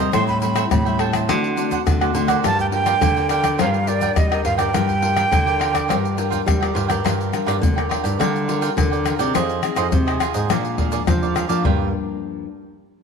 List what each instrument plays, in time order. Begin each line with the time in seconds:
Already playing: nylon-string guitar G2, cavaquinho D#5
0.00 cavaquinho A#4 C5
0.13 nylon-string guitar A2 G3 C4 E4, cavaquinho A4 C5 E5 G5, flute C6, pandeiro, tamborim, shaker, surdo
0.28 flute B5, pandeiro, shaker, surdo
0.41 nylon-string guitar G3 C4 E4, cavaquinho A4 C5 E5 G5, flute B5, pandeiro, shaker
0.55 cavaquinho A4 C5 E5 G5, pandeiro, tamborim, shaker
0.71 nylon-string guitar A2 E3, flute B5, pandeiro, tamborim, shaker, surdo
0.85 nylon-string guitar G3 C4 E4, cavaquinho C5 E5 G5, pandeiro, shaker
0.98 cavaquinho A4 C5 E5 G5, flute A5, pandeiro, tamborim
1.13 cavaquinho C5 E5 G5, pandeiro, tamborim, shaker, surdo
1.29 nylon-string guitar D3 A3 C4 F#4, cavaquinho D4 C5 D5 F#5, pandeiro, tamborim, shaker, surdo
1.44 pandeiro, shaker
1.56 nylon-string guitar A3 C4 F#4, cavaquinho D4 C5 D5 F#5, pandeiro, shaker
1.71 cavaquinho D4 C5 D5 F#5, pandeiro, shaker, surdo
1.86 nylon-string guitar A2 D3, pandeiro, tamborim, shaker, surdo
2.01 nylon-string guitar A3 C4 F#4, cavaquinho C5 D5 F#5, pandeiro, tamborim, shaker
2.14 nylon-string guitar D3, cavaquinho D4 C5 D5 F#5, pandeiro, shaker
2.28 nylon-string guitar D4 F4 A#4, cavaquinho C5 D5 F#5, pandeiro, tamborim, shaker, surdo
2.43 nylon-string guitar G2 G3, cavaquinho F4 A#4 D5 G5, flute A5, pandeiro, tamborim, shaker, surdo
2.59 flute G5, pandeiro, shaker, surdo
2.71 nylon-string guitar D4 F4 A#4, cavaquinho F4 A#4 D5 G5, flute G5, pandeiro
2.85 cavaquinho F4 A#4 D5 G5, pandeiro, tamborim, shaker
3.01 nylon-string guitar D3, pandeiro, tamborim, shaker, surdo
3.16 nylon-string guitar D4 F4 A#4, cavaquinho A#4 D5 G5, pandeiro, shaker
3.29 cavaquinho F4 A#4 D5 G5, flute G5, pandeiro, tamborim, shaker
3.43 cavaquinho A#4 D5 G5, pandeiro, tamborim, shaker, surdo
3.58 nylon-string guitar G2 G3 D4 F4 A#4, cavaquinho F4 A#4 D5 G5, flute F5, pandeiro, tamborim, shaker, surdo
3.74 pandeiro, shaker
3.87 nylon-string guitar D4 F4 A#4, cavaquinho F4 A#4 D5 G5, flute D5, pandeiro, shaker
4.01 cavaquinho F4 A#4 D5 G5, pandeiro, shaker, surdo
4.16 nylon-string guitar D3 G3, flute D#5, pandeiro, tamborim, shaker, surdo
4.31 nylon-string guitar D4 F4 A#4, cavaquinho A#4 D5 G5, pandeiro, tamborim, shaker
4.45 nylon-string guitar G2, cavaquinho F4 A#4 D5 G5, flute F5, pandeiro, surdo
4.58 nylon-string guitar D4 F4 A#4, cavaquinho A#4 D5 G5, flute G5, pandeiro, tamborim, shaker, surdo
4.73 nylon-string guitar G2 G3 D4 F4 A#4, cavaquinho F4 A#4 D5 G5, pandeiro, tamborim, shaker, surdo
4.89 pandeiro, shaker, surdo
5.02 nylon-string guitar D4 F4 A#4, cavaquinho F4 A#4 D5 G5, pandeiro
5.16 cavaquinho F4 A#4 D5 G5, pandeiro, tamborim, shaker
5.31 nylon-string guitar D3, pandeiro, tamborim, shaker, surdo
5.46 nylon-string guitar D4 F4 A#4, cavaquinho A#4 D5 G5, pandeiro, shaker
5.59 cavaquinho F4 A#4 D5 G5, pandeiro, tamborim
5.73 cavaquinho A#4 D5 G5, pandeiro, tamborim, shaker, surdo
5.88 nylon-string guitar G2 G3 D4 F4 A#4, cavaquinho F4 A#4 D5 G5, pandeiro, tamborim, shaker, surdo
6.05 pandeiro, shaker
6.17 nylon-string guitar D4 F4 A#4, cavaquinho F4 A#4 D5 G5, pandeiro, shaker
6.30 cavaquinho F4 A#4 D5 G5, pandeiro, shaker, surdo
6.46 nylon-string guitar D3 G3, pandeiro, tamborim, shaker, surdo
6.61 nylon-string guitar D4 F4 A#4, cavaquinho A#4 D5 G5, pandeiro, tamborim, shaker
6.74 nylon-string guitar G2, cavaquinho F4 A#4 D5 G5, pandeiro, surdo
6.88 nylon-string guitar D4 F4 A#4, cavaquinho A#4 D5 G5, pandeiro, tamborim, shaker, surdo
7.05 nylon-string guitar G2 G3, cavaquinho F4 A#4 D5 G5, pandeiro, tamborim, shaker, surdo
7.21 pandeiro, shaker
7.32 nylon-string guitar D4 F4 A#4, cavaquinho F4 A#4 D5 G5, pandeiro, tamborim, shaker
7.46 nylon-string guitar G2, cavaquinho F4 A#4 D5 G5, pandeiro, tamborim, shaker
7.62 nylon-string guitar D3, pandeiro, shaker, surdo
7.76 nylon-string guitar D4 F4 A#4, cavaquinho A#4 D5 G5, pandeiro, tamborim, shaker
7.89 cavaquinho F4 A#4 D5 G5, pandeiro, tamborim
8.03 nylon-string guitar G2, cavaquinho A#4 D5 G5, pandeiro, shaker
8.19 nylon-string guitar D3 G3, cavaquinho F4 A#4 D5 G5, pandeiro, tamborim, shaker, surdo
8.36 pandeiro, shaker
8.48 nylon-string guitar D4 F4 A#4, cavaquinho F4 A#4 D5 G5, pandeiro, shaker
8.61 cavaquinho F4 A#4 D5 G5, pandeiro, shaker
8.77 nylon-string guitar D3 D4 F4 A#4, pandeiro, tamborim, shaker, surdo
8.91 cavaquinho A#4 D5 G5, pandeiro, shaker
9.05 cavaquinho F4 A#4 D5 G5, pandeiro, tamborim, shaker
9.19 nylon-string guitar C3 C4 D#4 G#4, cavaquinho A#4 D5 G5, pandeiro, shaker
9.34 nylon-string guitar F2 F3, cavaquinho F4 G#4 C5 D#5, pandeiro, tamborim, shaker, surdo
9.49 pandeiro, shaker
9.62 nylon-string guitar C4 D#4 G#4, cavaquinho F4 G#4 C5 D#5, pandeiro, tamborim, shaker
9.76 nylon-string guitar F2, cavaquinho F4 G#4 C5 D#5, pandeiro, tamborim, shaker
9.92 nylon-string guitar C3, pandeiro, shaker, surdo
10.07 nylon-string guitar C4 D#4 G#4, cavaquinho G#4 C5 D#5, pandeiro, tamborim, shaker
10.20 cavaquinho F4 G#4 C5 D#5, pandeiro, tamborim, shaker
10.34 nylon-string guitar G#2, cavaquinho G#4 C5 D#5, pandeiro, shaker
10.50 nylon-string guitar A#2 F3 G#3 D4, cavaquinho G#4 A#4 D5 F5, pandeiro, tamborim, shaker, surdo
10.65 pandeiro, shaker
10.78 nylon-string guitar F3 G#3 D4, cavaquinho G#4 A#4 D5 F5, pandeiro, surdo
10.92 cavaquinho G#4 A#4 D5 F5, pandeiro, shaker
11.07 nylon-string guitar F2 F3 G#3 D4, pandeiro, tamborim, shaker, surdo
11.22 cavaquinho A#4 D5 F5, pandeiro, shaker
11.35 cavaquinho G#4 A#4 D5 F5, pandeiro, tamborim, shaker
11.49 nylon-string guitar F3 A#3 D4, cavaquinho A#4 D5 F5, pandeiro, shaker
11.64 nylon-string guitar G2 F3 A#3 D4, cavaquinho F4 A#4 D5 G5, surdo